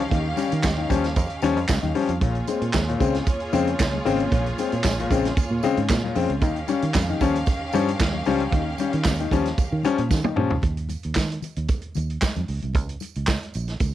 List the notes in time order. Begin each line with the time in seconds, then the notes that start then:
Already playing: D#3 C#4 G4 F5
0.10 D#2 D#3, kick, closed hi-hat, muted conga
0.37 G3 C#4, closed hi-hat, tambourine, muted conga
0.52 D#3, closed hi-hat
0.63 D#2 G3 C#4, kick, snare, clap, tambourine, high conga
0.77 D#3
0.90 D#2 F3 G3 C#4, kick, closed hi-hat, tambourine
1.04 snare, closed hi-hat
1.16 F2, kick, closed hi-hat, tambourine, muted conga, low conga
1.30 closed hi-hat
1.42 D#2 F3 G3 C#4, closed hi-hat, tambourine, muted conga, low conga
1.56 F2, closed hi-hat
1.68 C#2 G3 C#4, kick, snare, clap, tambourine, high conga
1.82 D#2 D#3, closed hi-hat, high conga
1.95 F3 G3 C#4, open hi-hat
2.09 F2, closed hi-hat
2.21 A#1 A#2 A#3 F4 G#4 C#5, kick, closed hi-hat, muted conga
2.35 closed hi-hat
2.47 G#3 C4, closed hi-hat, tambourine, muted conga
2.62 A#2, closed hi-hat
2.73 D#2 G#3 C4, kick, snare, clap, tambourine, high conga
2.89 A#2, closed hi-hat
3.00 C#2 C#3 G#3 C4, kick, closed hi-hat, tambourine, low conga
3.15 snare, closed hi-hat
3.27 kick, closed hi-hat, tambourine, muted conga
3.40 closed hi-hat
3.53 F2 C#3 G#3 C4, closed hi-hat, tambourine, muted conga, low conga
3.67 closed hi-hat
3.79 C#2, kick, snare, clap, tambourine, high conga
3.94 high conga
4.05 G#1 C#3 G#3 C4, open hi-hat, tambourine
4.20 closed hi-hat
4.31 A#1 A#2, kick, closed hi-hat, muted conga
4.46 closed hi-hat
4.58 G#3 C4, closed hi-hat, tambourine, muted conga
4.72 A#2, closed hi-hat
4.84 A#1 G#3 C4, kick, snare, clap, tambourine, high conga
4.99 A#2, closed hi-hat
5.11 A#1 C#3 G#3 C4, kick, closed hi-hat, tambourine
5.25 snare, closed hi-hat
5.37 muted fingered electric bass stroke, kick, closed hi-hat, tambourine, muted conga, low conga
5.51 A#2
5.63 C#3 G#3 C4, closed hi-hat, tambourine, muted conga, low conga
5.77 G#2, closed hi-hat
5.89 A#2 G#3 C4, kick, snare, clap, tambourine, high conga
6.04 A#2, high conga
6.15 F2 C#3 G#3 C4, open hi-hat, tambourine
6.30 C#2, closed hi-hat
6.41 D#2 D#3 C#4 G4 F5, kick, closed hi-hat, tambourine, muted conga
6.56 closed hi-hat
6.68 G3 C#4, closed hi-hat, tambourine, muted conga
6.82 D#3, closed hi-hat
6.94 F2 G3 C#4, kick, snare, clap, tambourine, high conga
7.09 D#3
7.21 D#2 F3 G3 C#4, kick, closed hi-hat, tambourine, low conga
7.36 closed hi-hat
7.46 kick, closed hi-hat, tambourine, muted conga
7.73 G2 F3 G3 C#4, closed hi-hat, tambourine, muted conga, low conga
7.88 closed hi-hat
7.99 D#2, kick, snare, clap, tambourine, high conga
8.14 high conga
8.26 C#2 F3 G3 C#4, open hi-hat, tambourine
8.40 closed hi-hat
8.51 D#2 D#3, kick, closed hi-hat, muted conga
8.78 G3 C#4, closed hi-hat, tambourine, muted conga
8.93 D#3, closed hi-hat
9.04 D#2 G3 C#4, kick, snare, clap, tambourine, high conga
9.20 D#3, closed hi-hat
9.31 D#2 F3 G3 C#4, kick, closed hi-hat, tambourine
9.45 snare, closed hi-hat
9.58 muted fingered electric bass stroke, kick, closed hi-hat, tambourine, low conga
9.72 D#3
9.83 F3 G3 C#4, closed hi-hat, tambourine, muted conga, low conga
9.98 A#2, closed hi-hat
10.09 D#3 G3 C#4, kick, snare, tambourine, high conga
10.24 D#3, high tom, high conga
10.36 A#2 F3 G3 C#4, mid tom
10.50 C#2, floor tom
10.62 D#2, kick, closed hi-hat, muted conga
10.77 closed hi-hat
10.89 closed hi-hat, tambourine, muted conga
11.03 D#2, closed hi-hat
11.15 D#3, kick, snare, clap, tambourine, high conga
11.32 closed hi-hat
11.42 closed hi-hat, tambourine, low conga
11.56 D#2, closed hi-hat
11.68 kick, closed hi-hat, tambourine, muted conga
11.82 closed hi-hat
11.95 D#2, closed hi-hat, tambourine, muted conga, low conga
12.10 closed hi-hat
12.21 kick, snare, clap, tambourine, high conga
12.36 F2, closed hi-hat, high conga
12.48 C#2, open hi-hat
12.62 C2, closed hi-hat, high conga
12.73 C#2, kick, closed hi-hat, tambourine, muted conga
12.89 closed hi-hat
13.00 closed hi-hat, tambourine, muted conga
13.15 C#2, closed hi-hat
13.27 kick, snare, clap, tambourine, high conga
13.43 closed hi-hat
13.54 A#1, closed hi-hat, tambourine
13.68 snare, closed hi-hat
13.80 C#2, kick, closed hi-hat, tambourine, muted conga, low conga